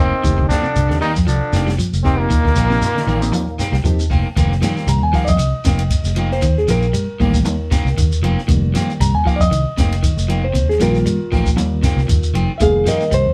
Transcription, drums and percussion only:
0.24 kick medium
0.24 closed hi-hat medium
0.24 shekere medium
0.38 kick medium
0.38 closed hi-hat soft
0.50 kick medium
0.50 snare medium
0.50 shekere medium
0.64 shekere soft
0.76 closed hi-hat medium
0.76 shekere loud
0.90 snare medium
0.90 closed hi-hat soft
1.02 open hi-hat medium
1.02 shekere soft
1.16 kick medium
1.16 snare soft
1.16 shekere medium
1.28 snare soft
1.28 closed hi-hat medium
1.28 shekere medium
1.53 snare medium
1.53 closed hi-hat medium
1.53 shekere medium
1.67 snare medium
1.67 closed hi-hat soft
1.67 shekere soft
1.79 closed hi-hat medium
1.79 shekere loud
1.94 closed hi-hat soft
1.94 shekere medium
2.05 kick medium
2.05 snare soft
2.05 closed hi-hat medium
2.05 shekere soft
2.20 closed hi-hat soft
2.30 kick loud
2.30 closed hi-hat medium
2.30 shekere medium
2.45 kick medium
2.45 snare soft
2.45 closed hi-hat soft
2.56 kick medium
2.56 snare medium
2.56 closed hi-hat soft
2.56 shekere medium
2.71 snare soft
2.71 shekere soft
2.82 closed hi-hat medium
2.82 shekere loud
2.97 snare medium
3.08 open hi-hat medium
3.08 shekere soft
3.22 shekere medium
3.33 closed hi-hat medium
3.33 shekere medium
3.48 closed hi-hat soft
3.59 snare medium
3.59 closed hi-hat medium
3.59 shekere medium
3.73 snare medium
3.73 closed hi-hat soft
3.73 shekere soft
3.85 closed hi-hat medium
3.85 shekere medium
3.99 shekere medium
4.11 kick medium
4.11 open hi-hat medium
4.11 shekere soft
4.37 kick loud
4.37 ride bell medium
4.37 shekere medium
4.52 snare soft
4.62 snare medium
4.62 ride bell medium
4.62 shekere loud
4.77 snare soft
4.77 shekere soft
4.88 ride bell medium
4.88 shekere medium
5.14 kick medium
5.14 snare soft
5.14 open hi-hat medium
5.14 shekere soft
5.27 kick medium
5.27 shekere medium
5.39 ride bell medium
5.39 shekere medium
5.65 kick medium
5.65 snare medium
5.65 ride bell medium
5.65 shekere medium
5.79 ride bell medium
5.79 shekere soft
5.91 kick medium
5.91 ride bell medium
5.91 shekere loud
6.04 snare soft
6.04 shekere medium
6.16 ride bell medium
6.16 shekere soft
6.32 snare soft
6.41 kick medium
6.41 ride bell medium
6.41 shekere medium
6.58 snare soft
6.68 snare medium
6.68 ride bell medium
6.68 shekere medium
6.82 shekere soft
6.94 ride bell medium
6.94 shekere loud
7.20 kick medium
7.20 open hi-hat medium
7.20 shekere soft
7.34 kick medium
7.34 snare soft
7.34 shekere medium
7.45 ride bell medium
7.45 shekere medium
7.71 kick medium
7.71 snare medium
7.71 ride bell medium
7.71 shekere loud
7.86 snare soft
7.86 shekere soft
7.97 kick medium
7.97 ride bell medium
7.97 shekere medium
8.12 shekere medium
8.24 ride bell medium
8.24 shekere soft
8.39 snare soft
8.49 kick loud
8.49 ride bell medium
8.49 shekere medium
8.75 snare medium
8.75 ride bell medium
8.75 shekere loud
8.89 snare soft
8.89 shekere soft
9.01 ride bell medium
9.01 shekere loud
9.26 kick medium
9.26 open hi-hat medium
9.26 shekere soft
9.40 kick medium
9.40 shekere medium
9.52 ride bell medium
9.52 shekere medium
9.78 kick medium
9.78 snare medium
9.78 ride bell medium
9.78 shekere medium
9.92 snare soft
9.92 ride bell medium
9.92 shekere soft
10.03 kick medium
10.03 ride bell medium
10.03 shekere medium
10.18 shekere medium
10.30 ride bell medium
10.30 shekere soft
10.55 kick loud
10.55 ride bell medium
10.55 shekere medium
10.70 snare soft
10.80 snare medium
10.80 ride bell medium
10.80 shekere medium
10.94 snare soft
10.94 shekere soft
11.06 ride bell medium
11.06 shekere loud
11.32 kick medium
11.32 snare soft
11.32 open hi-hat medium
11.32 shekere soft
11.46 kick medium
11.46 shekere medium
11.58 snare soft
11.58 ride bell medium
11.58 shekere medium
11.83 kick medium
11.83 snare medium
11.83 ride bell medium
11.83 shekere loud
11.98 snare soft
11.98 shekere soft
12.09 kick medium
12.09 ride bell medium
12.09 shekere loud
12.23 shekere medium
12.35 ride bell medium
12.35 shekere soft
12.60 kick loud
12.60 ride bell medium
12.60 shekere medium
12.86 snare medium
12.86 ride bell medium
12.86 shekere loud
13.01 snare soft
13.01 shekere soft
13.12 ride bell medium
13.12 shekere loud

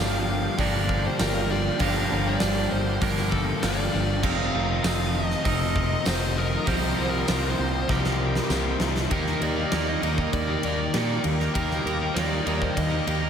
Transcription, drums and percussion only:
0.59 kick loud
0.59 open hi-hat medium
0.89 kick medium
1.19 snare loud
1.19 open hi-hat medium
1.19 tambourine medium
1.80 kick loud
1.80 open hi-hat medium
2.40 snare loud
2.40 open hi-hat medium
2.40 tambourine loud
3.02 kick loud
3.02 open hi-hat medium
3.17 snare soft
3.32 kick medium
3.63 snare loud
3.63 open hi-hat medium
3.63 tambourine loud
4.23 kick loud
4.23 crash medium
4.84 snare loud
4.84 open hi-hat medium
4.84 tambourine loud
5.31 snare soft
5.45 kick loud
5.45 open hi-hat medium
5.76 kick medium
6.06 snare loud
6.06 open hi-hat medium
6.06 tambourine medium
6.67 kick loud
6.67 open hi-hat medium
7.28 snare loud
7.28 open hi-hat medium
7.28 tambourine medium
7.89 kick loud
7.89 snare medium
8.05 snare medium
8.35 snare medium
8.50 snare medium
8.50 tambourine medium
8.80 snare loud
8.96 snare medium
9.11 kick loud
9.11 ride medium
9.27 snare soft
9.42 ride medium
9.72 snare loud
9.72 ride medium
10.03 ride medium
10.18 kick medium
10.33 kick medium
10.33 ride medium
10.63 ride medium
10.94 snare loud
10.94 ride medium
11.24 ride medium
11.40 snare soft
11.55 kick loud
11.55 ride loud
11.71 snare soft
11.87 ride medium
12.17 snare loud
12.17 ride loud
12.47 ride medium
12.62 kick medium
12.77 kick medium
12.77 ride medium
13.07 ride medium

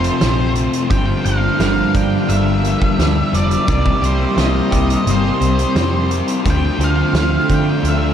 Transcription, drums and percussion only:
0.04 closed hi-hat medium
0.21 snare loud
0.21 closed hi-hat medium
0.56 closed hi-hat medium
0.73 closed hi-hat medium
0.91 kick loud
0.91 closed hi-hat medium
1.25 closed hi-hat medium
1.60 snare loud
1.60 closed hi-hat medium
1.95 kick medium
1.95 closed hi-hat medium
2.29 closed hi-hat medium
2.65 closed hi-hat medium
2.82 kick medium
3.00 snare loud
3.00 closed hi-hat medium
3.34 closed hi-hat medium
3.51 closed hi-hat medium
3.68 kick loud
3.68 closed hi-hat medium
3.86 kick medium
4.04 closed hi-hat medium
4.38 snare loud
4.38 closed hi-hat medium
4.72 kick medium
4.72 closed hi-hat medium
4.90 closed hi-hat medium
5.07 closed hi-hat medium
5.41 closed hi-hat medium
5.59 closed hi-hat medium
5.76 snare loud
5.76 closed hi-hat medium
6.11 closed hi-hat medium
6.28 closed hi-hat medium
6.46 kick loud
6.46 closed hi-hat medium
6.81 closed hi-hat medium
7.15 snare loud
7.15 closed hi-hat medium
7.49 kick medium
7.49 closed hi-hat medium
7.85 closed hi-hat medium

